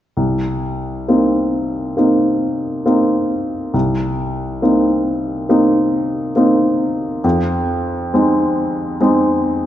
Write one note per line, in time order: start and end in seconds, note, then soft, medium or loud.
0.17 1.05 C2 soft
1.08 1.93 A#3 soft
1.08 1.93 C4 soft
1.08 1.94 D#4 soft
1.97 2.81 A#3 soft
1.97 2.82 C4 soft
1.97 2.82 D#4 soft
2.86 3.70 A#3 soft
2.86 3.70 C4 soft
2.86 3.71 D#4 soft
3.74 4.60 C2 soft
4.62 5.45 A#3 soft
4.62 5.45 C4 soft
4.62 5.46 D#4 soft
5.49 6.32 A#3 soft
5.49 6.32 C4 soft
5.49 6.32 D#4 soft
6.36 7.20 A#3 soft
6.36 7.20 C4 soft
6.36 7.20 D#4 soft
7.24 8.10 F2 medium
8.14 8.97 G#3 soft
8.14 8.97 C4 soft
8.14 8.98 D#4 soft
9.01 9.66 G#3 soft
9.01 9.66 C4 soft
9.01 9.66 D#4 soft